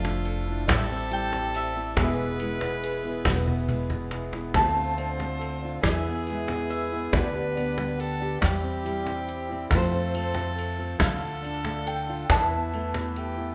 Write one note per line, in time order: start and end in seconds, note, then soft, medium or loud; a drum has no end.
0.00 0.64 F1 medium
0.00 0.16 F2 medium
0.00 0.68 F3 medium
0.00 0.64 A3 medium
0.00 0.48 D4 medium
0.00 0.66 D4 medium
0.00 0.70 F4 loud
0.00 0.68 A4 medium
0.00 0.68 E5 medium
0.00 0.70 A5 loud
0.04 0.69 D3 medium
0.04 0.77 A3 medium
0.04 cajon slap medium
0.25 0.76 A4 medium
0.25 ride medium
0.46 0.64 D4 medium
0.46 0.76 E4 medium
0.67 1.93 A1 medium
0.67 1.45 A2 medium
0.67 2.05 G3 loud
0.67 1.96 A3 medium
0.67 1.96 C4 medium
0.67 1.96 G4 medium
0.67 1.98 A4 loud
0.67 1.13 E5 medium
0.67 kick medium
0.67 cajon bass loud
0.67 snare medium
0.67 cajon slap loud
0.67 ride medium
0.89 1.31 C4 medium
0.89 1.75 C4 medium
1.11 1.97 G3 medium
1.11 1.75 E4 medium
1.11 1.56 G5 medium
1.11 ride medium
1.33 1.96 E3 medium
1.33 1.97 C4 medium
1.33 cajon slap medium
1.54 2.06 G4 medium
1.54 1.95 E5 medium
1.54 ride medium
1.76 1.92 C4 medium
1.76 2.06 E4 medium
1.96 3.22 E1 medium
1.96 2.74 E2 medium
1.96 4.52 E3 medium
1.96 2.59 E3 medium
1.96 2.41 G#3 medium
1.96 2.18 B3 medium
1.96 4.52 E4 medium
1.96 4.52 G#4 medium
1.96 4.51 G#4 medium
1.96 4.11 B4 loud
1.96 4.52 B4 medium
1.96 3.65 E5 medium
1.96 cajon bass loud
1.96 kick medium
1.96 cajon slap medium
1.96 ride medium
2.19 3.04 B3 medium
2.19 2.60 B3 medium
2.40 3.68 G#3 medium
2.40 3.03 E4 medium
2.40 ride medium
2.61 3.38 E3 medium
2.61 3.24 B3 medium
2.61 cajon slap medium
2.84 4.11 G#4 medium
2.84 ride medium
3.04 3.47 B3 medium
3.04 3.68 E4 medium
3.04 cajon slap soft
3.25 4.51 E1 medium
3.25 4.03 E2 medium
3.25 3.46 B3 medium
3.25 cajon bass medium
3.25 kick medium
3.25 cajon slap loud
3.25 snare medium
3.25 ride medium
3.47 3.89 B3 medium
3.47 4.34 B3 medium
3.47 cajon bass soft
3.69 4.50 G#3 medium
3.69 4.32 E4 soft
3.69 cajon bass medium
3.69 ride medium
3.90 4.55 E3 medium
3.90 4.64 B3 medium
3.90 cajon bass medium
4.11 4.64 G#4 medium
4.11 cajon slap medium
4.11 ride medium
4.33 4.56 B3 medium
4.33 4.63 E4 medium
4.33 cajon slap medium
4.54 5.80 D2 medium
4.54 5.82 D3 medium
4.54 5.32 D3 medium
4.54 5.84 F3 medium
4.54 5.83 A3 medium
4.54 5.19 A3 medium
4.54 5.83 C4 medium
4.54 4.98 C4 medium
4.54 5.83 F4 medium
4.54 4.76 F4 medium
4.54 5.79 C5 loud
4.54 5.80 A5 loud
4.54 cajon bass medium
4.54 kick medium
4.54 cajon slap medium
4.54 ride medium
4.75 5.16 C4 medium
4.75 5.63 F4 medium
4.75 cajon slap soft
4.97 5.79 C4 medium
4.97 5.60 D4 medium
4.97 ride medium
5.18 5.84 A3 medium
5.18 5.92 C4 medium
5.18 cajon slap medium
5.39 5.92 A4 medium
5.39 ride soft
5.61 5.92 D4 medium
5.61 5.80 F4 medium
5.83 7.09 E2 medium
5.83 6.62 E2 medium
5.83 7.21 E3 medium
5.83 7.12 E3 medium
5.83 7.12 E4 medium
5.83 7.14 G#4 loud
5.83 7.12 G#4 medium
5.83 8.40 B4 medium
5.83 6.66 E5 loud
5.83 cajon bass medium
5.83 kick medium
5.83 snare loud
5.83 cajon slap medium
5.83 ride medium
6.05 6.46 B3 medium
6.05 6.92 B3 medium
6.27 7.09 G#3 medium
6.27 6.90 E4 medium
6.27 ride soft
6.48 7.12 E3 medium
6.48 7.11 B3 medium
6.48 cajon slap medium
6.70 7.21 G#4 medium
6.70 7.14 E5 medium
6.70 ride soft
6.91 7.56 B3 medium
6.91 7.21 E4 medium
7.12 8.38 D2 loud
7.12 7.90 D3 medium
7.12 8.41 D3 medium
7.12 7.33 B3 medium
7.12 8.41 D4 medium
7.12 8.41 G4 medium
7.12 8.01 B4 loud
7.12 9.24 D5 medium
7.12 cajon bass loud
7.12 kick medium
7.12 cajon slap medium
7.12 ride medium
7.34 7.75 B3 medium
7.34 8.21 G4 medium
7.34 cajon slap soft
7.55 8.42 B3 medium
7.55 8.18 D4 medium
7.55 cajon slap soft
7.55 ride medium
7.77 8.42 G3 medium
7.77 8.50 B3 medium
7.77 cajon slap medium
7.98 8.50 G4 medium
7.98 8.41 A4 loud
7.98 ride medium
8.20 8.50 D4 medium
8.20 8.38 G4 medium
8.41 9.20 E2 medium
8.41 9.67 E2 medium
8.41 9.71 G3 loud
8.41 9.71 G3 medium
8.41 10.99 C4 medium
8.41 9.71 E4 medium
8.41 9.67 G4 loud
8.41 cajon bass medium
8.41 kick medium
8.41 cajon slap loud
8.41 snare loud
8.41 ride medium
8.63 9.03 C4 medium
8.63 9.50 C4 medium
8.84 9.72 G3 medium
8.84 9.47 E4 medium
8.84 ride medium
9.05 9.72 E3 medium
9.05 9.79 C4 medium
9.05 cajon slap medium
9.27 9.79 G4 medium
9.27 ride medium
9.49 9.67 C4 medium
9.49 9.79 E4 medium
9.70 10.97 F2 loud
9.70 10.49 F2 medium
9.70 10.97 F3 medium
9.70 10.36 F3 medium
9.70 10.15 A3 medium
9.70 10.97 A4 loud
9.70 10.54 C5 loud
9.70 cajon bass medium
9.70 kick medium
9.70 cajon slap medium
9.70 ride medium
9.74 11.01 A3 medium
9.74 9.94 C4 medium
9.74 12.29 F4 medium
9.74 10.97 F4 medium
9.92 10.33 C4 medium
9.92 10.78 C4 medium
10.13 10.96 A3 medium
10.13 10.76 F4 medium
10.13 cajon slap soft
10.13 ride medium
10.35 11.00 F3 medium
10.35 11.09 C4 medium
10.35 cajon slap medium
10.56 11.08 A4 medium
10.56 ride medium
10.77 10.96 C4 medium
10.77 11.08 F4 medium
10.99 12.26 D2 medium
10.99 11.78 D3 medium
10.99 12.30 D3 medium
10.99 12.29 F3 medium
10.99 12.30 D4 medium
10.99 12.31 A4 loud
10.99 11.87 F5 medium
10.99 cajon bass loud
10.99 kick medium
10.99 cajon slap loud
10.99 snare loud
10.99 ride medium
11.03 13.55 A4 medium
11.20 11.63 A3 medium
11.20 12.08 F4 medium
11.42 12.06 D4 medium
11.42 12.26 D4 medium
11.42 ride soft
11.64 12.38 A3 medium
11.64 12.30 A3 medium
11.64 cajon slap medium
11.86 12.38 A4 medium
11.86 12.31 G5 medium
11.86 ride medium
12.08 12.38 D4 medium
12.08 12.25 F4 medium
12.29 13.55 E2 loud
12.29 13.08 E2 medium
12.29 13.55 E3 medium
12.29 13.19 E4 medium
12.29 13.55 E4 medium
12.29 13.55 B4 medium
12.29 13.24 A5 loud
12.29 cajon bass loud
12.29 kick medium
12.29 cajon slap loud
12.29 ride medium
12.51 12.93 B3 medium
12.51 13.37 B3 medium
12.72 13.55 A3 medium
12.72 13.36 E4 medium
12.72 cajon slap soft
12.72 ride soft
12.94 13.55 E3 medium
12.94 13.55 B3 medium
12.94 cajon slap medium
13.16 13.52 G4 medium
13.16 13.55 A4 medium
13.16 cajon slap soft
13.16 ride soft
13.37 13.55 B3 medium
13.37 13.55 E4 medium